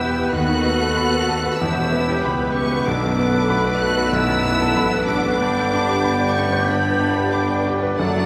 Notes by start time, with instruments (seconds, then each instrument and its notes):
Already playing: tuba E1, grand piano E2 B2 B3 G4 B4 B5, double bass section E2, french horn section G3 B3, bassoon B3, cello section E4, viola section G4, violin section B4 G5 E6, oboe B4, flute section G6
0.02 viola section B3, grand piano G4
0.18 grand piano B4
0.33 grand piano D#2, tuba D#2, double bass section D#2, french horn section A3, viola section B3 F#4, cello section F#4, clarinet A4, violin section D#5 F#6, flute section F#6
0.48 grand piano D#3
0.64 viola section A3, grand piano B3
0.81 grand piano A4
0.97 viola section B3, violin section A4 F#5, grand piano B5
1.14 grand piano B4
1.29 viola section C4, grand piano A4
1.45 grand piano B4
1.59 tuba E1, double bass section E2, grand piano E2, viola section C#4 F#4, cello section E4, clarinet G4, violin section A4 B4 E6, flute section G6
1.78 grand piano B2
1.93 grand piano B3, viola section E4
2.09 grand piano G4
2.23 tuba C#2, double bass section C#2, french horn section G3, viola section B3 E4, cello section B3, violin section G4 B5, grand piano B5
2.42 grand piano B4
2.56 cello section C#4, grand piano G4, violin section C#6
2.72 grand piano B4
2.86 grand piano B1, double bass section B1, tuba B1, french horn section A3 B3, bassoon B3, viola section D4, cello section D4, violin section F#4 D6, clarinet A4, oboe B4, flute section F#6
3.03 grand piano F#2
3.19 grand piano B3
3.34 grand piano A4
3.50 viola section A3 F#4, violin section B4 D5, grand piano B5
3.66 grand piano B4
3.79 cello section F#4, grand piano A4, violin section F#6
3.96 grand piano B4
4.11 grand piano B1, viola section B3 E4, cello section E4, violin section B4 D5 E6
4.28 grand piano F#2
4.45 grand piano B3
4.62 grand piano A4
4.75 double bass section A1, tuba A1, viola section D4, violin section F#4 F#5, grand piano B5
4.93 grand piano B4
5.08 viola section C#4, cello section D4, grand piano A4, violin section D6
5.26 grand piano B4
5.39 tuba G1, double bass section G1, grand piano G2, french horn section G3, viola section D4, clarinet G4, violin section G4 B5, oboe D5, flute section G6
5.56 grand piano D3
5.74 grand piano D4
5.88 grand piano G4
6.03 viola section B3, violin section B4 G5, grand piano B5
6.20 grand piano D5
6.35 viola section A3, cello section C#4, grand piano G4, violin section C#6
6.53 grand piano B4
6.68 grand piano G2, viola section G3 D4, cello section B3, violin section B4 B5
6.85 grand piano D3
7.01 grand piano D4
7.18 grand piano G4
7.33 viola section B3, cello section D4, violin section G5 D6, grand piano B5
7.50 grand piano D5
7.64 viola section C#4, grand piano G4
7.83 grand piano B4
7.97 tuba F#1, double bass section F#1, grand piano F#2, french horn section F#3 D4, cello section F#3, viola section A3 D4, bassoon A3, clarinet F#4, violin section A4 D5 F#5, flute section A6
8.16 grand piano F#3